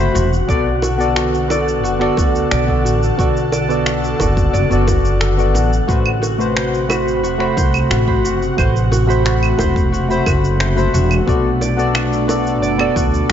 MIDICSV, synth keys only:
0, 0, Header, 1, 2, 480
1, 0, Start_track
1, 0, Tempo, 674157
1, 349, Time_signature, 4, 2, 24, 8
1, 9486, End_track
2, 0, Start_track
2, 0, Title_t, "Synth keys"
2, 0, Program_c, 0, 88
2, 0, Note_on_c, 0, 57, 79
2, 0, Note_on_c, 0, 66, 69
2, 0, Note_on_c, 0, 72, 86
2, 0, Note_on_c, 0, 83, 72
2, 214, Note_off_c, 0, 57, 0
2, 217, Note_off_c, 0, 66, 0
2, 221, Note_off_c, 0, 83, 0
2, 225, Note_off_c, 0, 72, 0
2, 338, Note_on_c, 0, 59, 77
2, 344, Note_on_c, 0, 66, 72
2, 350, Note_on_c, 0, 69, 71
2, 356, Note_on_c, 0, 74, 93
2, 488, Note_off_c, 0, 59, 0
2, 491, Note_off_c, 0, 66, 0
2, 494, Note_off_c, 0, 69, 0
2, 497, Note_off_c, 0, 74, 0
2, 695, Note_on_c, 0, 59, 79
2, 701, Note_on_c, 0, 66, 71
2, 709, Note_on_c, 0, 69, 70
2, 715, Note_on_c, 0, 74, 82
2, 1033, Note_off_c, 0, 59, 0
2, 1036, Note_off_c, 0, 66, 0
2, 1040, Note_off_c, 0, 69, 0
2, 1043, Note_off_c, 0, 74, 0
2, 1054, Note_on_c, 0, 59, 74
2, 1061, Note_on_c, 0, 66, 68
2, 1069, Note_on_c, 0, 69, 66
2, 1076, Note_on_c, 0, 74, 79
2, 1393, Note_off_c, 0, 59, 0
2, 1397, Note_off_c, 0, 66, 0
2, 1401, Note_off_c, 0, 69, 0
2, 1404, Note_off_c, 0, 74, 0
2, 1417, Note_on_c, 0, 59, 91
2, 1424, Note_on_c, 0, 66, 90
2, 1430, Note_on_c, 0, 69, 82
2, 1437, Note_on_c, 0, 74, 104
2, 1874, Note_off_c, 0, 59, 0
2, 1878, Note_off_c, 0, 66, 0
2, 1881, Note_off_c, 0, 69, 0
2, 1884, Note_off_c, 0, 74, 0
2, 1898, Note_on_c, 0, 59, 73
2, 1905, Note_on_c, 0, 66, 68
2, 1911, Note_on_c, 0, 69, 67
2, 1919, Note_on_c, 0, 74, 83
2, 2133, Note_off_c, 0, 59, 0
2, 2137, Note_off_c, 0, 66, 0
2, 2140, Note_off_c, 0, 69, 0
2, 2144, Note_off_c, 0, 74, 0
2, 2261, Note_on_c, 0, 59, 80
2, 2269, Note_on_c, 0, 66, 70
2, 2275, Note_on_c, 0, 69, 70
2, 2282, Note_on_c, 0, 74, 86
2, 2409, Note_off_c, 0, 59, 0
2, 2413, Note_off_c, 0, 66, 0
2, 2416, Note_off_c, 0, 69, 0
2, 2420, Note_off_c, 0, 74, 0
2, 2623, Note_on_c, 0, 59, 72
2, 2627, Note_on_c, 0, 66, 70
2, 2636, Note_on_c, 0, 69, 69
2, 2642, Note_on_c, 0, 74, 82
2, 2957, Note_off_c, 0, 59, 0
2, 2959, Note_off_c, 0, 66, 0
2, 2963, Note_off_c, 0, 69, 0
2, 2967, Note_off_c, 0, 74, 0
2, 2981, Note_on_c, 0, 59, 69
2, 2988, Note_on_c, 0, 66, 67
2, 2997, Note_on_c, 0, 69, 70
2, 3004, Note_on_c, 0, 74, 78
2, 3317, Note_off_c, 0, 59, 0
2, 3320, Note_off_c, 0, 66, 0
2, 3325, Note_off_c, 0, 69, 0
2, 3328, Note_off_c, 0, 74, 0
2, 3344, Note_on_c, 0, 59, 89
2, 3352, Note_on_c, 0, 66, 84
2, 3361, Note_on_c, 0, 69, 79
2, 3367, Note_on_c, 0, 74, 98
2, 3798, Note_off_c, 0, 59, 0
2, 3802, Note_off_c, 0, 66, 0
2, 3806, Note_off_c, 0, 69, 0
2, 3809, Note_off_c, 0, 74, 0
2, 3822, Note_on_c, 0, 59, 74
2, 3831, Note_on_c, 0, 66, 73
2, 3838, Note_on_c, 0, 69, 66
2, 3844, Note_on_c, 0, 74, 79
2, 4055, Note_off_c, 0, 59, 0
2, 4060, Note_off_c, 0, 66, 0
2, 4064, Note_off_c, 0, 69, 0
2, 4067, Note_off_c, 0, 74, 0
2, 4180, Note_on_c, 0, 57, 78
2, 4186, Note_on_c, 0, 66, 71
2, 4194, Note_on_c, 0, 71, 73
2, 4201, Note_on_c, 0, 72, 84
2, 4329, Note_off_c, 0, 57, 0
2, 4332, Note_off_c, 0, 66, 0
2, 4336, Note_off_c, 0, 71, 0
2, 4339, Note_off_c, 0, 72, 0
2, 4542, Note_on_c, 0, 57, 75
2, 4549, Note_on_c, 0, 66, 66
2, 4555, Note_on_c, 0, 71, 67
2, 4562, Note_on_c, 0, 72, 81
2, 4876, Note_off_c, 0, 57, 0
2, 4880, Note_off_c, 0, 66, 0
2, 4883, Note_off_c, 0, 71, 0
2, 4887, Note_off_c, 0, 72, 0
2, 4900, Note_on_c, 0, 57, 74
2, 4905, Note_on_c, 0, 66, 68
2, 4911, Note_on_c, 0, 83, 70
2, 4920, Note_on_c, 0, 72, 80
2, 5236, Note_off_c, 0, 57, 0
2, 5239, Note_off_c, 0, 66, 0
2, 5242, Note_off_c, 0, 83, 0
2, 5246, Note_off_c, 0, 72, 0
2, 5253, Note_on_c, 0, 57, 89
2, 5260, Note_on_c, 0, 66, 82
2, 5268, Note_on_c, 0, 83, 78
2, 5275, Note_on_c, 0, 72, 98
2, 5713, Note_off_c, 0, 57, 0
2, 5716, Note_off_c, 0, 66, 0
2, 5720, Note_off_c, 0, 83, 0
2, 5723, Note_off_c, 0, 72, 0
2, 5739, Note_on_c, 0, 57, 79
2, 5745, Note_on_c, 0, 66, 68
2, 5751, Note_on_c, 0, 83, 72
2, 5758, Note_on_c, 0, 72, 83
2, 5974, Note_off_c, 0, 57, 0
2, 5977, Note_off_c, 0, 66, 0
2, 5980, Note_off_c, 0, 83, 0
2, 5983, Note_off_c, 0, 72, 0
2, 6099, Note_on_c, 0, 57, 77
2, 6107, Note_on_c, 0, 66, 73
2, 6113, Note_on_c, 0, 71, 68
2, 6120, Note_on_c, 0, 72, 89
2, 6248, Note_off_c, 0, 57, 0
2, 6252, Note_off_c, 0, 66, 0
2, 6255, Note_off_c, 0, 71, 0
2, 6258, Note_off_c, 0, 72, 0
2, 6455, Note_on_c, 0, 57, 73
2, 6463, Note_on_c, 0, 66, 72
2, 6469, Note_on_c, 0, 83, 69
2, 6477, Note_on_c, 0, 72, 91
2, 6793, Note_off_c, 0, 57, 0
2, 6797, Note_off_c, 0, 66, 0
2, 6800, Note_off_c, 0, 83, 0
2, 6804, Note_off_c, 0, 72, 0
2, 6818, Note_on_c, 0, 57, 71
2, 6825, Note_on_c, 0, 66, 70
2, 6831, Note_on_c, 0, 83, 67
2, 6838, Note_on_c, 0, 72, 85
2, 7155, Note_off_c, 0, 57, 0
2, 7159, Note_off_c, 0, 66, 0
2, 7162, Note_off_c, 0, 83, 0
2, 7165, Note_off_c, 0, 72, 0
2, 7180, Note_on_c, 0, 57, 98
2, 7189, Note_on_c, 0, 66, 82
2, 7195, Note_on_c, 0, 83, 83
2, 7202, Note_on_c, 0, 72, 101
2, 7636, Note_off_c, 0, 57, 0
2, 7641, Note_off_c, 0, 66, 0
2, 7644, Note_off_c, 0, 83, 0
2, 7647, Note_off_c, 0, 72, 0
2, 7658, Note_on_c, 0, 57, 82
2, 7666, Note_on_c, 0, 66, 71
2, 7671, Note_on_c, 0, 83, 73
2, 7678, Note_on_c, 0, 72, 89
2, 7893, Note_off_c, 0, 57, 0
2, 7898, Note_off_c, 0, 66, 0
2, 7900, Note_off_c, 0, 83, 0
2, 7904, Note_off_c, 0, 72, 0
2, 8016, Note_on_c, 0, 59, 83
2, 8023, Note_on_c, 0, 66, 70
2, 8031, Note_on_c, 0, 69, 76
2, 8038, Note_on_c, 0, 74, 87
2, 8167, Note_off_c, 0, 59, 0
2, 8170, Note_off_c, 0, 66, 0
2, 8174, Note_off_c, 0, 69, 0
2, 8178, Note_off_c, 0, 74, 0
2, 8376, Note_on_c, 0, 59, 76
2, 8383, Note_on_c, 0, 66, 69
2, 8388, Note_on_c, 0, 69, 72
2, 8396, Note_on_c, 0, 74, 92
2, 8714, Note_off_c, 0, 59, 0
2, 8717, Note_off_c, 0, 66, 0
2, 8719, Note_off_c, 0, 69, 0
2, 8723, Note_off_c, 0, 74, 0
2, 8739, Note_on_c, 0, 59, 81
2, 8745, Note_on_c, 0, 66, 67
2, 8754, Note_on_c, 0, 69, 67
2, 8759, Note_on_c, 0, 74, 86
2, 9076, Note_off_c, 0, 59, 0
2, 9079, Note_off_c, 0, 66, 0
2, 9083, Note_off_c, 0, 69, 0
2, 9086, Note_off_c, 0, 74, 0
2, 9099, Note_on_c, 0, 59, 91
2, 9105, Note_on_c, 0, 66, 82
2, 9113, Note_on_c, 0, 69, 87
2, 9117, Note_on_c, 0, 74, 106
2, 9486, Note_off_c, 0, 59, 0
2, 9486, Note_off_c, 0, 66, 0
2, 9486, Note_off_c, 0, 69, 0
2, 9486, Note_off_c, 0, 74, 0
2, 9486, End_track
0, 0, End_of_file